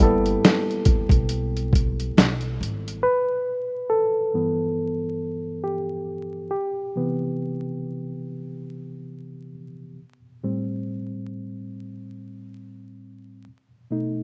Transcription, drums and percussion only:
0.26 closed hi-hat
0.45 snare, closed hi-hat
0.71 closed hi-hat
0.85 kick, closed hi-hat
1.09 kick, closed hi-hat
1.29 closed hi-hat
1.57 closed hi-hat
1.73 kick, closed hi-hat
2.00 closed hi-hat
2.18 snare, closed hi-hat
2.41 closed hi-hat
2.63 closed hi-hat
2.88 closed hi-hat

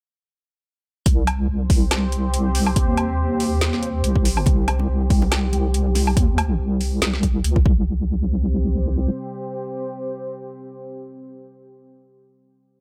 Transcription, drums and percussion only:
1.06 kick, closed hi-hat
1.27 closed hi-hat, low woodblock
1.70 kick, open hi-hat
1.91 snare, closed hi-hat, low woodblock
2.12 closed hi-hat
2.34 closed hi-hat
2.55 open hi-hat
2.67 low woodblock
2.76 kick, closed hi-hat
2.97 closed hi-hat, low woodblock
3.40 open hi-hat
3.61 snare, closed hi-hat
3.73 snare
3.83 closed hi-hat
4.04 closed hi-hat
4.16 kick
4.25 open hi-hat
4.37 low woodblock
4.46 kick, closed hi-hat, low conga
4.68 closed hi-hat, high bongo, low woodblock
4.79 high bongo
5.10 kick, open hi-hat, high conga
5.22 high bongo
5.32 snare, closed hi-hat, low woodblock
5.53 closed hi-hat, high conga
5.74 closed hi-hat
5.95 open hi-hat, high bongo, high conga
6.07 low woodblock
6.17 kick, closed hi-hat
6.38 closed hi-hat, low woodblock
6.81 open hi-hat
7.02 snare, closed hi-hat
7.14 snare
7.23 kick, closed hi-hat
7.44 closed hi-hat
7.56 kick
7.66 kick

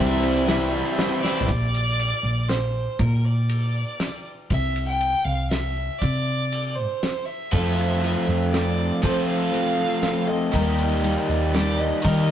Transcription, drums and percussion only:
0.23 ride
0.36 tambourine
0.48 snare, ride, tambourine
0.61 tambourine
0.72 tambourine
0.85 tambourine
0.99 snare, ride
1.11 tambourine
1.24 snare, tambourine
1.41 floor tom
1.49 kick, ride
1.74 ride
1.99 ride
2.49 snare, ride
2.99 kick, ride
3.49 ride
4.00 snare, ride
4.50 kick, ride
4.76 ride
5.01 ride
5.51 snare, ride
6.02 kick, ride
6.52 ride
7.03 snare, ride
7.53 kick, ride
7.78 ride
8.04 ride
8.54 snare, ride
9.03 kick, ride
9.54 ride
10.03 snare, ride
10.53 kick, ride
10.78 ride
11.04 ride
11.55 snare, ride
12.04 kick, ride

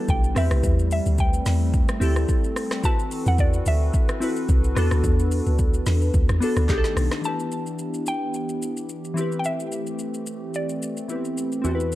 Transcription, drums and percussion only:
0.08 kick, shaker
0.24 shaker
0.36 cross-stick, open hi-hat, shaker
0.51 cross-stick, shaker
0.64 kick, shaker
0.79 shaker
0.91 open hi-hat, shaker
1.06 shaker
1.18 kick, shaker
1.33 shaker
1.46 snare, open hi-hat, shaker
1.73 kick, shaker
1.89 cross-stick, shaker
2.02 open hi-hat, shaker
2.16 cross-stick, shaker
2.29 kick, shaker
2.44 shaker
2.56 cross-stick, open hi-hat, shaker
2.71 cross-stick, snare, shaker
2.84 kick, shaker
2.99 shaker
3.11 open hi-hat, shaker
3.26 shaker
3.38 kick, shaker
3.54 shaker
3.66 open hi-hat, shaker
3.94 kick, shaker
4.09 cross-stick, shaker
4.22 open hi-hat, shaker
4.36 shaker
4.49 kick, shaker
4.64 shaker
4.76 cross-stick, open hi-hat, shaker
4.91 cross-stick, shaker
5.04 kick, shaker
5.19 shaker
5.31 open hi-hat, shaker
5.46 shaker
5.59 kick, shaker
5.74 shaker
5.86 snare, open hi-hat, shaker
6.02 shaker
6.14 kick, shaker
6.29 cross-stick, shaker
6.42 open hi-hat, shaker
6.57 cross-stick, shaker
6.69 kick, clap, shaker
6.84 snare, shaker
6.97 cross-stick, open hi-hat, shaker
7.12 cross-stick, snare, shaker
7.24 shaker
7.40 shaker
7.52 shaker
7.66 shaker
7.79 shaker
7.94 shaker
8.06 shaker
8.34 shaker
8.49 shaker
8.62 shaker
8.77 shaker
8.89 shaker
9.05 shaker
9.17 shaker
9.32 shaker
9.44 shaker
9.60 shaker
9.72 shaker
9.87 shaker
9.99 shaker
10.14 shaker
10.27 shaker
10.54 shaker
10.69 shaker
10.82 shaker
10.97 shaker
11.09 shaker
11.25 shaker
11.38 shaker
11.52 shaker
11.65 shaker
11.80 shaker
11.92 shaker

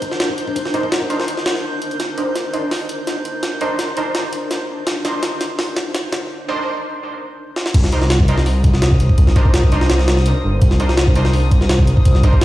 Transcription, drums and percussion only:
0.02 kick, closed hi-hat
0.12 snare
0.20 snare, closed hi-hat
0.29 kick
0.38 closed hi-hat
0.47 kick
0.56 kick, closed hi-hat
0.65 snare
0.74 kick, closed hi-hat
0.83 kick
0.92 snare, closed hi-hat
1.01 kick
1.10 closed hi-hat
1.20 snare
1.28 closed hi-hat
1.37 snare
1.46 snare, closed hi-hat
1.55 snare
1.82 closed hi-hat
1.91 closed hi-hat
2.00 snare, closed hi-hat
2.18 closed hi-hat
2.35 snare, closed hi-hat
2.54 closed hi-hat
2.71 snare, open hi-hat
2.89 closed hi-hat
3.07 snare, closed hi-hat
3.25 closed hi-hat
3.43 snare, closed hi-hat
3.61 closed hi-hat
3.79 snare, closed hi-hat
3.97 closed hi-hat
4.15 snare, closed hi-hat
4.33 closed hi-hat
4.51 snare, closed hi-hat
4.87 snare, closed hi-hat
5.05 snare, closed hi-hat
5.23 snare, closed hi-hat
5.41 snare, closed hi-hat
5.59 snare, open hi-hat
5.76 snare, closed hi-hat
5.95 snare, closed hi-hat
6.12 snare, closed hi-hat
7.56 snare
7.66 snare
7.74 kick, closed hi-hat, crash
7.84 snare
7.92 closed hi-hat
8.02 snare
8.10 snare, closed hi-hat
8.20 kick
8.28 closed hi-hat
8.38 snare
8.46 open hi-hat
8.64 kick, closed hi-hat
8.74 snare
8.82 snare, closed hi-hat
8.92 kick
9.00 closed hi-hat
9.09 kick
9.18 kick, closed hi-hat
9.27 snare
9.36 kick, closed hi-hat
9.45 kick
9.54 snare, closed hi-hat
9.63 kick
9.72 closed hi-hat
9.81 snare
9.90 snare, closed hi-hat
9.99 snare
10.08 snare, closed hi-hat
10.17 snare
10.26 closed hi-hat
10.62 kick, closed hi-hat
10.71 snare
10.80 closed hi-hat
10.89 snare
10.97 snare, closed hi-hat
11.07 kick
11.15 closed hi-hat
11.25 snare
11.33 open hi-hat
11.51 kick, closed hi-hat
11.61 snare
11.69 snare, closed hi-hat
11.79 kick
11.87 closed hi-hat
11.97 kick
12.05 kick, closed hi-hat
12.15 snare
12.23 kick, closed hi-hat
12.33 kick
12.41 snare, closed hi-hat

